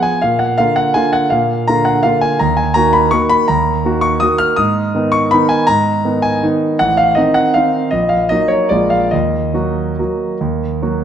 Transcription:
0.00 0.18 F3 soft
0.00 0.19 B3 soft
0.00 0.19 G#4 soft
0.00 0.22 G#5 medium
0.22 0.58 A#2 soft
0.22 0.40 F5 medium
0.39 0.58 F#5 medium
0.58 0.93 D3 soft
0.58 0.93 A#3 soft
0.58 0.93 F4 soft
0.58 0.77 F5 medium
0.76 0.95 F#5 medium
0.94 1.28 D3 soft
0.94 1.29 A#3 soft
0.94 1.29 F4 soft
0.94 1.13 G#5 medium
1.13 1.31 F#5 medium
1.30 1.67 A#2 soft
1.30 1.67 F5 medium
1.68 2.02 D3 soft
1.68 2.02 A#3 soft
1.68 2.02 F4 soft
1.68 1.86 A#5 medium
1.85 2.04 F#5 medium
2.03 2.36 D3 soft
2.03 2.37 A#3 soft
2.03 2.37 F4 soft
2.03 2.22 F5 medium
2.21 2.39 G#5 medium
2.39 2.75 D#2 medium
2.39 2.57 A#5 medium
2.57 2.75 G#5 medium
2.74 3.09 D#3 soft
2.74 3.09 A#3 soft
2.74 3.10 F#4 soft
2.74 2.93 A#5 medium
2.93 3.12 B5 medium
3.11 3.46 D#3 soft
3.11 3.46 A#3 soft
3.11 3.46 F#4 soft
3.11 3.31 C#6 medium
3.29 3.49 B5 medium
3.48 3.84 D#2 medium
3.48 4.03 A#5 medium
3.85 4.18 D#3 soft
3.85 4.18 A#3 soft
3.85 4.19 F#4 medium
4.01 4.21 C#6 medium
4.20 4.55 D#3 soft
4.20 4.55 A#3 soft
4.20 4.55 F#4 soft
4.20 4.40 D#6 medium
4.38 4.58 F6 medium
4.56 4.94 G#2 medium
4.56 5.13 D#6 medium
4.95 5.29 D#3 soft
4.95 5.29 B3 soft
4.95 5.29 D#4 soft
5.12 5.32 C#6 medium
5.31 5.65 D#3 soft
5.31 5.65 B3 soft
5.31 5.66 D#4 soft
5.31 5.50 B5 medium
5.49 5.68 G#5 medium
5.67 6.04 G#2 medium
5.67 6.23 A#5 medium
6.05 6.39 D#3 soft
6.05 6.39 B3 soft
6.05 6.40 D#4 soft
6.22 6.42 G#5 medium
6.43 6.77 D#3 soft
6.43 6.77 B3 soft
6.43 6.77 D#4 soft
6.79 7.16 A1 medium
6.79 6.98 F#5 medium
6.97 7.17 F5 medium
7.15 7.52 D#3 soft
7.15 7.52 C4 soft
7.15 7.52 D#4 soft
7.15 7.35 D#5 medium
7.34 7.55 F#5 medium
7.54 7.90 D#3 soft
7.54 7.90 C4 soft
7.54 7.90 D#4 soft
7.54 7.93 F5 medium
7.91 8.29 A#1 soft
7.91 8.10 D#5 medium
8.09 8.30 F5 medium
8.29 8.67 F#3 soft
8.29 8.68 A#3 soft
8.29 8.68 D#4 soft
8.29 8.50 D#5 medium
8.48 8.70 C#5 medium
8.69 9.12 A#1 soft
8.69 9.09 G#3 soft
8.69 9.09 A#3 soft
8.69 9.09 F4 soft
8.69 8.91 D5 medium
8.90 9.12 F5 medium
9.11 9.54 D#2 soft
9.11 11.04 D#5 medium
9.54 9.94 F#3 soft
9.54 9.94 A#3 soft
9.54 9.94 F#4 soft
9.99 10.37 F#3 soft
9.99 10.37 A#3 soft
9.99 10.37 F#4 soft
10.41 10.81 D#2 soft
10.82 11.04 F#3 soft
10.82 11.04 A#3 soft
10.82 11.04 F#4 soft

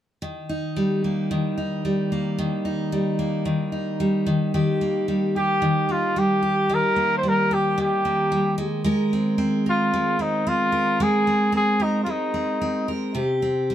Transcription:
0.22 1.30 D#3 medium
0.49 1.57 D#4 soft
0.76 1.84 G3 medium
1.04 2.11 A#3 soft
1.31 2.38 D#3 medium
1.58 2.65 D#4 soft
1.85 2.92 G3 medium
2.12 3.18 A#3 soft
2.38 3.45 D#3 medium
2.65 3.72 D#4 soft
2.92 4.00 G3 medium
3.19 4.81 A#3 soft
3.45 4.26 D#3 medium
3.72 7.22 D#4 soft
4.00 5.08 G3 medium
4.26 4.54 D#3 medium
4.54 5.61 D#3 medium
4.54 5.34 G4 soft
4.81 5.88 A#3 soft
5.08 6.15 G3 medium
5.36 6.41 G4 soft
5.36 5.93 G4 medium
5.62 6.69 D#3 medium
5.89 6.96 A#3 soft
5.89 6.20 F4 medium
6.16 7.22 G3 medium
6.16 6.76 G4 medium
6.43 6.68 G4 soft
6.69 7.77 D#3 medium
6.69 7.50 G4 soft
6.74 7.17 A#4 medium
6.96 8.05 A#3 soft
7.18 7.30 C5 medium
7.23 8.30 G3 medium
7.29 7.55 A#4 medium
7.51 8.64 G4 medium
7.51 7.79 G4 medium
7.78 11.28 D#3 medium
7.78 8.56 G4 medium
8.05 8.87 A#3 soft
8.32 8.57 G3 medium
8.58 8.83 G#3 medium
8.84 9.92 G#3 medium
8.84 9.65 A#4 medium
9.13 9.38 C4 soft
9.38 10.19 C4 medium
9.66 10.23 F4 medium
9.66 10.71 A#4 soft
9.94 10.99 G#3 medium
10.19 10.46 C4 soft
10.19 10.50 D#4 medium
10.47 11.27 C4 medium
10.47 11.04 F4 medium
10.72 10.99 A#4 medium
11.00 12.05 G#3 medium
11.00 11.55 G#4 medium
11.00 11.78 A#4 soft
11.27 11.52 C4 soft
11.52 12.34 C4 medium
11.52 11.85 G#4 medium
11.80 12.02 D#4 medium
11.80 12.87 A#4 soft
12.04 13.21 G#3 medium
12.04 12.12 F4 medium
12.11 12.90 D#4 medium
12.34 12.61 C4 soft
12.61 13.42 C4 soft
12.88 13.15 A#4 medium
13.15 13.75 C3 medium
13.15 13.75 G4 medium
13.42 13.75 C4 soft
13.70 13.75 G3 soft

